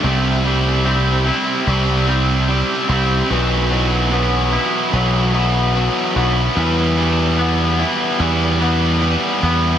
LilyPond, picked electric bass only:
\new Staff \with { instrumentName = "Picked electric bass" } { \clef bass \time 4/4 \key e \minor \tempo 4 = 74 c,2 c,4. c,8 | b,,2 b,,4. b,,8 | e,2 e,4. e,8 | }